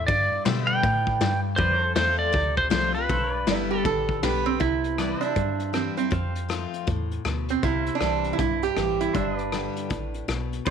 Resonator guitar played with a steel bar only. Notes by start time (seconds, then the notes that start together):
3.47 E4
3.71 G4
3.86 A4
4.24 B4
4.46 C4
4.60 E4
5.21 D4
5.74 C4
5.97 C4
7.50 C4
7.64 E4
7.95 D4
8.33 E4
8.39 E4
8.63 G4
9.01 E4
9.15 D4
10.67 C5